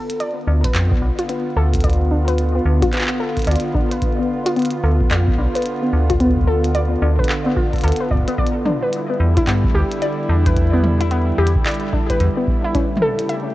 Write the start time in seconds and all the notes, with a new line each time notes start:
Already playing: D3 B3 F4
0.10 closed hi-hat
0.20 D5, closed hi-hat
0.47 D2 D4
0.64 B4, kick, closed hi-hat
0.75 F2, clap, closed hi-hat
0.92 B3, kick
1.02 B1
1.19 F4, closed hi-hat
1.29 B3, closed hi-hat
1.56 D2 A4
1.73 kick, closed hi-hat
1.80 D5, kick, closed hi-hat
1.84 closed hi-hat
1.89 closed hi-hat
1.93 closed hi-hat
2.11 D4
2.28 B4, closed hi-hat
2.38 closed hi-hat
2.55 B3
2.66 D2
2.82 F4, kick, closed hi-hat
2.93 B3, clap, closed hi-hat
2.96 clap
2.98 clap
3.01 clap
3.07 clap
3.20 A4
3.37 kick, closed hi-hat
3.40 closed hi-hat
3.42 closed hi-hat
3.45 closed hi-hat
3.47 D2 D5, closed hi-hat
3.52 closed hi-hat
3.56 closed hi-hat
3.60 closed hi-hat
3.75 D4, kick
3.92 B4, closed hi-hat
4.02 kick, closed hi-hat
4.19 B3
4.46 F4, closed hi-hat
4.56 B3, closed hi-hat
4.59 closed hi-hat
4.62 closed hi-hat
4.65 closed hi-hat
4.71 closed hi-hat
4.84 D2 A4
5.01 kick
5.11 F2 D5, clap, closed hi-hat
5.28 kick
5.38 B1 D4
5.55 B4, closed hi-hat
5.62 closed hi-hat
5.66 closed hi-hat
5.82 B3
5.93 D2
6.10 F4, kick, closed hi-hat
6.20 B3, kick, closed hi-hat
6.26 kick
6.29 kick
6.37 kick
6.44 A4, kick
6.64 closed hi-hat
6.75 D5, closed hi-hat
7.02 D2 D4
7.19 B4, kick
7.24 closed hi-hat
7.29 clap
7.46 B3
7.56 F4, kick
7.73 A4, kick, closed hi-hat
7.76 closed hi-hat
7.79 closed hi-hat
7.81 D2, closed hi-hat
7.84 A4, closed hi-hat
7.88 closed hi-hat
7.92 closed hi-hat
7.96 closed hi-hat
8.01 B4
8.11 D5, kick
8.15 kick
8.19 kick
8.24 kick
8.28 B3, closed hi-hat
8.38 G3 E4 D5, kick
8.47 closed hi-hat
8.66 D4, mid tom
8.83 B4
8.93 closed hi-hat
9.10 B3
9.20 E2
9.37 E4, kick, closed hi-hat
9.47 G2 B3, clap, closed hi-hat
9.64 kick
9.75 D2 G4
9.92 closed hi-hat
10.02 D5, closed hi-hat
10.29 E2 D4
10.46 B4, kick, closed hi-hat
10.56 kick, closed hi-hat
10.73 B3
10.84 mid tom
11.01 E4, closed hi-hat
11.11 B3, closed hi-hat
11.38 E2 G4
11.47 closed hi-hat
11.55 kick
11.66 D5, clap, closed hi-hat
11.68 closed hi-hat
11.71 closed hi-hat
11.74 closed hi-hat
11.80 closed hi-hat
11.93 D4, kick
12.10 B4, kick, closed hi-hat
12.20 E2, closed hi-hat
12.37 B3
12.47 kick
12.64 E4
12.75 C#3 A3 C#4 G4, kick, closed hi-hat
12.97 mid tom
13.02 A4
13.19 closed hi-hat
13.29 E5, closed hi-hat